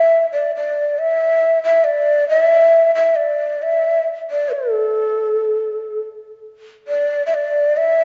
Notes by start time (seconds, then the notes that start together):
Already playing: E5
0.32 D5
0.56 D5
0.98 E5
1.64 E5
1.84 D5
2.29 E5
2.95 E5
3.16 D5
3.62 E5
4.31 D5
4.53 A4
6.88 D5
7.26 E5
7.34 D5
7.77 E5